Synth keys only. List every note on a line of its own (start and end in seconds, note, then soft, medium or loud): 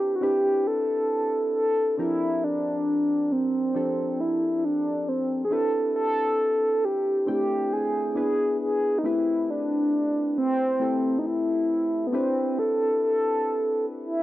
0.00 0.21 C4 medium
0.00 0.21 D4 medium
0.00 0.22 E4 medium
0.00 0.22 G4 medium
0.00 0.23 B4 medium
0.21 1.29 C4 medium
0.21 1.29 D4 medium
0.21 1.29 E4 medium
0.21 1.30 G4 medium
0.21 1.30 B4 medium
1.98 3.06 F3 medium
1.98 3.05 C4 medium
1.98 3.06 D4 medium
1.98 3.06 G4 medium
1.98 3.06 A#4 medium
3.74 4.82 F3 medium
3.74 4.82 C4 medium
3.74 4.82 D4 medium
3.74 4.83 G4 medium
3.74 4.83 A4 medium
5.50 6.58 C4 medium
5.50 6.58 D4 medium
5.50 6.59 E4 medium
5.50 6.59 G4 medium
5.50 6.59 B4 medium
7.27 8.16 A3 medium
7.27 8.15 C4 medium
7.27 8.14 D4 medium
7.27 8.15 E4 medium
7.27 8.16 G5 medium
8.15 8.86 B3 medium
8.15 8.86 D4 medium
8.15 8.86 E4 medium
8.15 8.87 G#4 medium
8.15 8.87 B4 medium
9.03 10.11 A3 medium
9.03 10.11 C4 medium
9.03 10.12 E4 medium
9.03 10.12 G4 medium
9.03 10.12 B4 medium
10.80 11.88 A3 medium
10.80 11.88 C4 medium
10.80 11.88 E4 medium
10.80 11.88 G4 medium
10.80 11.89 A4 medium
12.12 13.54 C4 medium
12.12 13.54 D4 medium
12.12 13.54 E4 medium
12.12 13.54 G4 medium
12.12 13.55 B4 loud